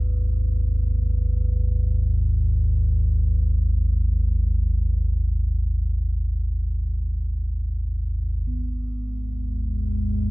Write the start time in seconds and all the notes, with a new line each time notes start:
Already playing: G#1 D#2 B4
8.45 G#1 D#2 G#3 B3
9.76 D#4